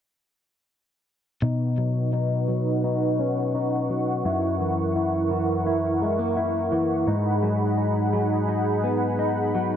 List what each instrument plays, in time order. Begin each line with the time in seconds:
1.42 clean electric guitar B2 D#4, analog synth pad D#4 B4 F#5 C#6
1.78 clean electric guitar F#3
2.13 clean electric guitar D#4
2.48 clean electric guitar F#3
2.84 clean electric guitar D#4
3.19 clean electric guitar C#4
3.55 clean electric guitar D#4
3.90 clean electric guitar F#3
4.25 clean electric guitar F#2 E4, analog synth pad E4 A#4
4.60 clean electric guitar E3
4.96 clean electric guitar E4
5.31 clean electric guitar E3
5.67 clean electric guitar E4
6.02 clean electric guitar G#3
6.19 clean electric guitar A#3
6.37 clean electric guitar E4
6.72 clean electric guitar E3
7.07 clean electric guitar G#2 D#4, analog synth pad D#4 G#4 F#5 B5
7.43 clean electric guitar F#3
7.78 clean electric guitar D#4
8.13 clean electric guitar F#3
8.49 clean electric guitar D#4
8.84 clean electric guitar B3
9.19 clean electric guitar D#4
9.55 clean electric guitar F#3